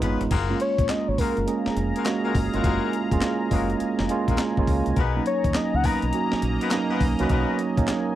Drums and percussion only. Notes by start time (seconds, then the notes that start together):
0.02 closed hi-hat, floor tom
0.21 closed hi-hat, floor tom
0.31 kick, closed hi-hat, crash
0.60 closed hi-hat
0.79 kick, closed hi-hat
0.89 snare, clap, closed hi-hat
1.18 kick, open hi-hat
1.37 closed hi-hat
1.48 closed hi-hat
1.66 snare
1.77 closed hi-hat
1.96 closed hi-hat
2.05 snare, clap, closed hi-hat
2.35 kick, open hi-hat
2.54 closed hi-hat
2.64 kick, closed hi-hat
2.93 closed hi-hat
3.12 kick, closed hi-hat
3.21 snare, clap, closed hi-hat
3.51 kick, open hi-hat
3.70 closed hi-hat
3.80 closed hi-hat
3.99 snare
4.09 closed hi-hat
4.28 kick, closed hi-hat
4.38 snare, clap, closed hi-hat
4.57 kick
4.67 kick, open hi-hat
4.86 closed hi-hat
4.96 kick, closed hi-hat
5.26 closed hi-hat
5.44 kick, closed hi-hat
5.54 snare, clap, closed hi-hat
5.84 kick, open hi-hat
6.02 closed hi-hat
6.13 closed hi-hat
6.32 snare
6.42 closed hi-hat
6.61 closed hi-hat
6.71 snare, clap, closed hi-hat
7.00 kick, open hi-hat
7.19 closed hi-hat
7.29 kick, closed hi-hat
7.59 closed hi-hat
7.77 kick, closed hi-hat
7.87 snare, clap, closed hi-hat